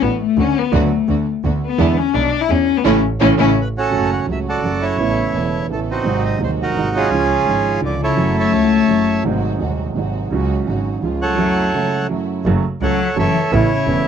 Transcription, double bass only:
0.01 A1
0.37 D2
0.73 D2
1.08 D2
1.44 D2
1.79 E2
2.14 B1
2.50 E2
2.85 A1
3.21 A1
3.38 A1
3.92 F#1
4.28 C#2
4.63 F#1
4.99 A1
5.35 E1
5.70 A1
6.06 G#1
6.41 D#2
6.76 G#1
7.12 C#2
7.47 G#1
7.82 C#2
8.19 F#1
8.54 C#2
8.90 F#1
9.25 G#1
9.61 D#2
9.96 G#1
10.32 C#2
10.68 G#1
11.03 C#2
12.46 F#1
12.81 C#2
13.17 F#1
13.53 A1
13.88 E1

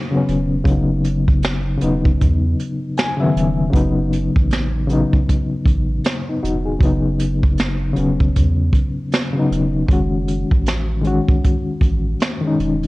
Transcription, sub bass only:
0.28 E1
0.66 F#1
1.82 E1
2.22 E2
3.36 E1
3.74 F#1
4.37 A1
5.66 A1
6.43 E1
6.81 F#1
7.97 E1
8.37 E2
9.51 E1
9.89 F#1
10.52 A1
11.82 A1
12.59 E1

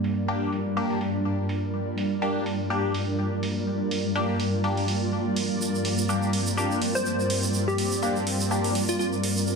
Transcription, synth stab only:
0.28 A#3 D4 G4
0.77 A#3 D4 G4
2.22 A#3 D4 G4
2.70 A#3 D4 G4
4.16 A#3 D4 G4
4.64 A#3 D4 G4
6.09 A#3 D4 G4
6.57 A#3 D4 G4
8.03 A#3 D4 G4
8.51 A#3 D4 G4

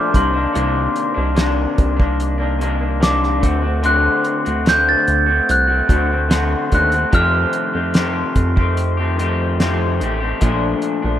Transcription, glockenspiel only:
Already playing: D6
0.16 C6
3.03 D6
3.86 F#6
4.69 G6
4.89 A6
5.51 F#6
6.75 F#6
7.15 F6

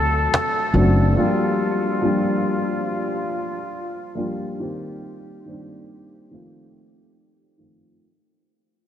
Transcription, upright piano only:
Already playing: F#3 A3 C4 D4 A4
0.74 F#3 A3 C4 D4 F#4
1.16 F3 G3 A#3 D4 G4
2.02 F3 G3 A#3 D4 G4
4.15 F3 G3 A#3 D4 G4
4.59 D#3 G3 A#3 C4 G4
5.45 D#3 G3 A#3 C4 D4
6.31 D#3 F3 A3 C4 F4
7.58 D#3 F3 A3 C4 F4

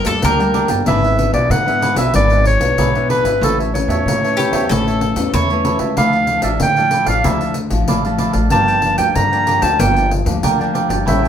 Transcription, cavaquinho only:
0.24 D4 A#4 D5 G5
0.40 A#4 D5 G5
0.54 D4 A#4 D5 G5
0.69 A#4 D5 G5
0.87 D4 G#4 B4 E5
1.04 G#4 B4 E5
1.18 muted cavaquinho stroke
1.34 G#4 B4 E5
1.67 G#4 B4 E5
1.81 D4 G#4 B4 E5
1.97 G#4 B4 E5
2.15 D4 G#4 B4 E5
2.31 G#4 B4 E5
2.45 muted cavaquinho stroke
2.78 D4 G#4 B4 E5
2.95 G#4 B4 E5
3.09 D4 G#4 B4 E5
3.24 G#4 B4 E5
3.42 E4 A4 C#5 E5
3.59 A4 C#5 E5
3.74 muted cavaquinho stroke
3.89 A4 C#5 E5
4.23 A4 C#5 E5
4.38 E4 A4 C#5 E5
4.53 A4 C#5 E5
4.71 E4 A4 C#5 E5
4.87 A4 C#5 E5
5.01 muted cavaquinho stroke
5.33 E4 A4 C#5 E5
5.50 A4 C#5 E5
5.65 E4 A4 C#5 E5
5.79 A4 C#5 E5
5.97 E4 A4 D5 F5
6.14 A4 D5 F5
6.28 muted cavaquinho stroke
6.43 A4 D5 F5
6.77 A4 D5 F5
6.91 E4 A4 D5 F5
7.06 A4 D5 F5
7.24 E4 A4 D5 F5
7.41 A4 D5 F5
7.55 muted cavaquinho stroke
7.88 E4 A4 D5 F5
8.05 A4 D5 F5
8.18 E4 A4 D5 F5
8.33 A4 D5 F5
8.52 F4 A#4 D5 G5
8.67 A#4 D5 G5
8.98 A#4 D5 G5
9.32 A#4 D5 G5
9.47 F4 A#4 D5 G5
9.62 A#4 D5 G5
9.80 F4 A#4 D5 G5
9.97 A#4 D5 G5
10.12 muted cavaquinho stroke
10.43 F4 A#4 D5 G5
10.60 A#4 D5 G5
10.74 F4 A#4 D5 G5
10.89 A#4 D5 G5
11.06 E4 A4 C#5 G5
11.22 A4 C#5 G5

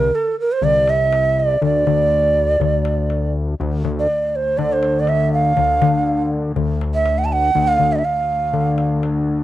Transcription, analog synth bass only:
Already playing: C2
0.61 C2
1.62 D2
1.87 D2
2.60 D2
3.60 D2
3.84 D2
4.59 D3
5.58 D2
5.82 D3
6.56 D2
7.55 D2
7.80 D2
8.53 D3

